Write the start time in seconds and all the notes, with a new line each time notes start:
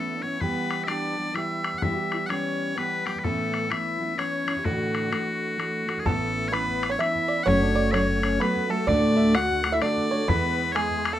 Already playing: E3 A3 B3 C#4 E4 A4
0.15 D4
0.22 E3 B3 C#4 E4 C#5
0.40 E3 G3 B3 G4 B4, bodhran
0.71 bodhran
0.84 E3 D4 D5 E5
0.88 G3 B3 G4, bodhran
1.16 E3 G3 B3 G4
1.34 E3 G3 B3 E4 G4 E5, bodhran
1.64 bodhran
1.74 bodhran
1.78 E3 F#5
1.82 G3 B3 E4 G4 E5, bodhran
1.96 F#4
2.12 E4, bodhran
2.26 E3 G3 C#4 C#5 F#5, bodhran
2.31 B3 G4
2.76 E3 G3 B3 G4 B4, bodhran
3.05 E3 G3 B3 G4, bodhran
3.16 B4, bodhran
3.23 A2 E3 A3 B3 C#4 E4 A4, bodhran
3.54 bodhran
3.70 E3 B3 C#4 E4 E5, bodhran
3.74 E4
4.00 E3 B3 C#4 E4
4.17 E3 B3 C#4 E4 C#5, bodhran
4.46 E3 B3 C#4 E4, bodhran
4.56 G4, bodhran
4.64 D2 A2 E3 A3 D4 F#4, bodhran
4.95 bodhran
5.11 E3 A3 D4 F#4, bodhran
5.57 E3 A3 D4 F#4, bodhran
5.86 E3 A3 D4 F#4, bodhran
5.97 G#4, bodhran
6.04 A1 A2 E3 A3 B3 C#4 E4 A4, bodhran
6.35 A3
6.48 E3 B3 C#5
6.52 B3 C#4 E4 B4, bodhran
6.68 bodhran
6.83 bodhran
6.90 C#4 C#5
6.99 E3 B3 C#4 E4 E5, bodhran
7.15 bodhran
7.28 D5
7.43 F#1 F#3 A3 C#4 C#5 F#5
7.48 F#4 C#5, bodhran
7.61 D4
7.75 C#4 D5
7.91 F#3 A3 C#4 C#5 E5, bodhran
7.96 F#4
8.09 bodhran
8.23 C#4, bodhran
8.39 F#3 A3 B3 C#4 F#4 B4, bodhran
8.56 bodhran
8.69 F#3 A3 C#4 F#4 A4
8.87 D2 A2 D3 A3 D4 F#4 D5, bodhran
9.17 E5
9.34 D3 A3 D4 F#4 F#5, bodhran
9.50 bodhran
9.63 D3 A3 D4 F#4, bodhran
9.72 E4 E5
9.81 D3 A3 D4 F#4 D5, bodhran
9.97 bodhran
10.10 D3 A3 D4 F#4 C#5
10.28 E2 E3 G#3 B3 E4 B4, bodhran
10.72 E3 G#4 C#5, bodhran
10.76 G#3 B3 E4
10.91 bodhran
11.05 bodhran
11.13 A3 A4